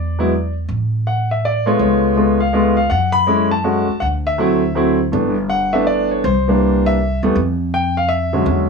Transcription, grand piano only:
0.00 0.53 D5 medium
0.19 0.31 F#3 medium
0.19 0.31 G#3 medium
0.19 0.31 B3 medium
0.19 0.31 E4 medium
1.07 1.29 F#5 medium
1.31 1.44 E5 medium
1.45 1.69 D5 medium
1.66 2.14 G#3 medium
1.66 2.14 A3 medium
1.66 2.14 B3 medium
1.66 2.14 F4 medium
1.66 1.79 C#5 medium
1.81 2.43 C#5 medium
2.16 2.38 G#3 medium
2.16 2.38 A3 medium
2.16 2.38 B3 medium
2.16 2.39 F4 medium
2.40 2.75 F5 medium
2.53 2.75 G#3 medium
2.53 2.75 A3 medium
2.53 2.75 B3 medium
2.53 2.76 F4 medium
2.77 2.91 F5 medium
2.90 3.15 F#5 loud
3.12 3.52 B5 loud
3.27 3.49 G#3 medium
3.27 3.49 A3 medium
3.27 3.49 C#4 medium
3.27 3.49 E4 medium
3.51 4.03 A5 medium
3.64 3.86 G#3 medium
3.64 3.86 A3 medium
3.64 3.86 C#4 medium
3.64 3.86 F#4 medium
4.00 4.06 F#5 loud
4.27 4.96 E5 loud
4.38 4.60 F#3 medium
4.38 4.60 A3 medium
4.38 4.61 C4 medium
4.38 4.61 E4 medium
4.75 4.97 F#3 medium
4.75 4.97 A3 medium
4.75 4.97 C4 medium
4.75 4.98 E4 medium
5.12 5.34 E3 medium
5.12 5.34 A3 medium
5.12 5.34 B3 medium
5.12 5.34 D4 medium
5.50 5.74 F#5 loud
5.73 6.21 E3 medium
5.73 6.21 A3 medium
5.73 6.22 B3 medium
5.73 6.22 D4 medium
5.73 5.87 E5 medium
5.87 6.09 D5 loud
6.11 6.25 C#5 medium
6.25 6.87 C5 loud
6.48 6.96 E3 medium
6.48 6.96 G3 medium
6.48 6.96 A#3 medium
6.48 6.96 D4 medium
6.86 7.20 E5 loud
7.23 7.34 E3 medium
7.23 7.35 G3 medium
7.23 7.35 A3 medium
7.23 7.35 B3 medium
7.74 7.98 G5 loud
7.97 8.09 F5 loud
8.09 8.69 E5 medium
8.33 8.44 D3 medium
8.33 8.45 F#3 medium
8.33 8.45 G#3 medium
8.33 8.45 C#4 medium
8.46 8.68 D3 medium
8.46 8.68 F#3 medium
8.46 8.68 G#3 medium
8.46 8.68 C#4 medium

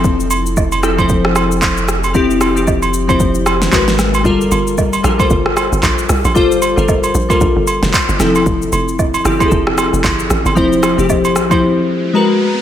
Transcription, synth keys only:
0.00 0.62 F3 medium
0.00 0.63 C4 medium
0.00 0.63 E4 medium
0.00 0.64 A4 loud
0.82 0.95 F3 medium
0.82 0.95 C4 medium
0.82 0.96 E4 medium
0.82 0.96 A4 medium
0.97 1.81 F3 medium
0.97 1.82 C4 medium
0.97 1.82 E4 medium
0.97 1.83 C5 medium
2.13 2.47 F3 loud
2.13 2.47 C4 loud
2.13 2.47 E4 loud
2.13 2.48 G4 loud
2.55 2.96 F3 medium
2.55 2.96 C4 medium
2.55 2.97 E4 medium
2.55 2.97 G4 medium
3.07 3.72 F3 medium
3.07 3.72 C4 medium
3.07 3.73 E4 medium
3.07 3.73 C5 medium
3.71 4.16 G#3 medium
3.71 4.16 F#4 medium
3.71 4.17 A#4 medium
3.71 4.17 B4 loud
4.24 4.89 G3 loud
4.24 4.90 F4 loud
4.24 4.90 A4 medium
4.24 4.91 A#4 loud
5.03 5.16 G3 medium
5.03 5.16 F4 medium
5.03 5.17 A4 medium
5.03 5.17 A#4 medium
5.18 6.02 G3 medium
5.18 6.03 F4 medium
5.18 6.03 A4 medium
5.18 6.03 C5 medium
6.34 6.68 G3 loud
6.34 6.68 F4 loud
6.34 6.68 A4 loud
6.34 6.69 C5 loud
6.76 7.17 G3 medium
6.76 7.18 F4 medium
6.76 7.18 A4 medium
6.76 7.18 A#4 medium
7.29 8.13 G3 medium
7.29 8.13 F4 medium
7.29 8.14 A4 medium
7.29 8.14 A#4 medium
8.19 9.04 F3 medium
8.19 9.05 C4 medium
8.19 9.05 E4 medium
8.19 9.06 A4 loud
9.24 9.37 F3 medium
9.24 9.37 C4 medium
9.24 9.38 E4 medium
9.24 9.38 G4 medium
9.39 10.23 F3 medium
9.39 10.24 C4 medium
9.39 10.24 E4 medium
9.39 9.46 G#4 medium
9.48 10.28 A4 medium
10.55 10.88 F3 loud
10.55 10.89 C4 loud
10.55 10.89 E4 loud
10.55 10.90 C5 loud
10.97 11.38 F3 medium
10.97 11.38 C4 medium
10.97 11.39 E4 medium
10.97 11.39 G4 medium
11.50 12.14 F3 medium
11.50 12.14 C4 medium
11.50 12.15 E4 medium
11.50 12.15 C5 medium
12.13 12.58 G#3 medium
12.13 12.58 F#4 medium
12.13 12.59 A#4 medium
12.13 12.59 B4 loud
12.13 12.62 A#5 medium

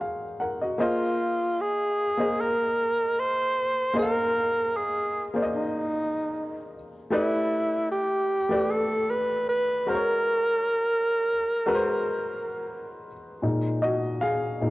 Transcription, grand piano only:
0.00 0.81 G#3 medium
0.00 0.62 F#4 medium
0.00 0.38 G#4 soft
0.00 0.41 A#4 medium
0.00 0.79 C5 medium
0.00 0.81 C#5 medium
0.00 0.38 F5 medium
0.40 0.61 A#4 medium
0.40 0.60 F#5 medium
0.61 0.99 F#4 soft
0.61 0.79 D#5 medium
0.78 2.03 A#3 medium
0.78 2.03 G#4 medium
0.78 2.04 C5 medium
0.78 2.04 D#5 medium
2.17 3.59 A#3 medium
2.17 3.59 G#4 medium
2.17 3.59 C5 medium
2.17 3.60 D#5 medium
3.94 5.19 A#3 medium
3.94 5.19 G#4 medium
3.94 5.19 C5 medium
3.94 4.03 D#5 medium
4.02 5.23 F5 medium
5.34 6.75 A#3 medium
5.34 6.75 G#4 medium
5.34 6.75 C5 medium
5.34 5.42 D5 medium
5.42 6.79 D#5 medium
7.10 8.35 A3 medium
7.10 8.36 G4 medium
7.10 8.36 B4 medium
7.10 8.36 D5 medium
8.49 9.87 A3 medium
8.49 9.87 G4 medium
8.49 9.88 B4 medium
8.49 9.88 D5 medium
9.86 11.30 G#3 medium
9.86 11.30 F#4 medium
9.86 11.30 A#4 medium
9.86 9.95 C5 medium
9.95 11.34 C#5 medium
11.66 13.07 G#3 medium
11.66 13.07 F#4 medium
11.66 13.07 A#4 medium
11.66 11.73 B4 medium
11.75 13.11 C5 loud
13.42 14.57 A#2 soft
13.42 14.57 G#3 soft
13.42 14.57 D#4 medium
13.82 14.20 F#4 medium
13.82 14.23 D#5 medium
14.21 14.70 G#4 medium
14.21 14.70 F5 medium
14.61 14.70 A#2 soft
14.61 14.70 G#3 soft
14.61 14.70 D#4 medium

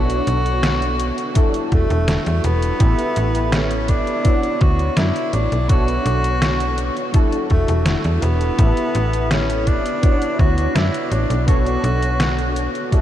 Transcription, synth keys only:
0.00 1.28 B3 medium
0.00 1.28 D4 medium
0.00 1.29 F#4 medium
0.00 1.29 A4 medium
0.00 1.29 C#5 medium
1.34 2.72 G3 medium
1.34 2.73 D4 medium
1.34 2.73 E4 medium
1.34 2.74 F#4 medium
1.34 2.74 A4 medium
2.79 4.17 B3 medium
2.79 4.17 E4 medium
2.79 4.18 G4 medium
2.79 4.18 A4 medium
2.79 4.19 E5 medium
4.23 5.62 B3 medium
4.23 5.62 D4 medium
4.23 5.62 E4 medium
4.23 5.63 F#4 medium
4.23 5.63 C#5 medium
5.67 7.06 B3 medium
5.67 7.06 D4 medium
5.67 7.07 F#4 medium
5.67 7.07 A4 medium
5.67 7.08 C#5 medium
7.12 8.51 G3 medium
7.12 8.51 D4 medium
7.12 8.51 E4 medium
7.12 8.52 F#4 medium
7.12 8.52 A4 medium
8.57 9.95 B3 medium
8.57 9.96 E4 medium
8.57 9.96 G4 medium
8.57 9.96 A4 medium
8.57 9.97 E5 medium
10.02 11.40 B3 medium
10.02 11.40 D4 medium
10.02 11.41 E4 medium
10.02 11.41 F#4 medium
10.02 11.42 C#5 medium
11.46 12.85 B3 medium
11.46 12.85 D4 medium
11.46 12.85 F#4 medium
11.46 12.86 A4 medium
11.46 12.86 C#5 medium
12.91 13.01 G3 medium
12.91 13.01 D4 medium
12.91 13.01 E4 medium
12.91 13.01 F#4 medium
12.91 13.01 A4 medium

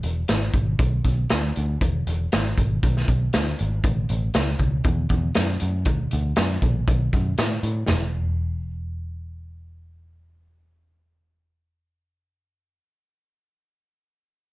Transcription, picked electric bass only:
0.04 0.23 E1 medium
0.29 0.48 G#1 medium
0.54 0.73 G#1 medium
0.80 0.99 B1 loud
1.05 1.24 B1 medium
1.32 1.51 D2 medium
1.57 1.76 D2 medium
1.81 2.00 E1 medium
2.07 2.26 E1 medium
2.34 2.52 G#1 medium
2.58 2.77 G#1 medium
2.84 3.02 B1 medium
3.09 3.27 B1 medium
3.35 3.53 D2 medium
3.61 3.79 G#1 medium
3.84 4.03 A1 medium
4.10 4.29 A1 medium
4.36 4.54 C#2 medium
4.59 4.79 C#2 medium
4.85 5.04 E2 medium
5.10 5.29 E2 medium
5.37 5.56 F#2 medium
5.62 5.86 F#2 medium
5.86 6.05 D2 medium
6.13 6.32 D2 medium
6.38 6.57 F#2 medium
6.62 6.81 A#1 medium
6.88 7.07 B1 medium
7.14 7.33 F#2 medium
7.38 7.58 A2 medium
7.63 7.83 A2 medium
7.91 12.78 E1 medium

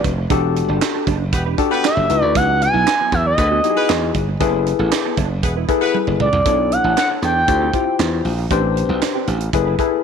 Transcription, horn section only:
1.32 1.44 B3 medium
1.32 1.44 G4 medium
1.32 1.44 B4 loud
1.71 1.87 B3 loud
1.71 1.87 G4 loud
1.71 1.88 B4 loud
3.37 3.49 B3 medium
3.37 3.48 F#4 medium
3.37 3.49 G#4 medium
3.37 3.49 B4 medium
3.76 3.93 B3 loud
3.76 3.92 F#4 loud
3.76 3.92 G#4 loud
3.76 3.93 B4 loud
5.43 5.54 B3 medium
5.43 5.54 E4 medium
5.43 5.54 G#4 medium
5.43 5.54 B4 medium
5.82 5.98 B3 loud
5.82 5.98 E4 loud
5.82 5.98 G#4 loud
5.82 5.98 B4 loud

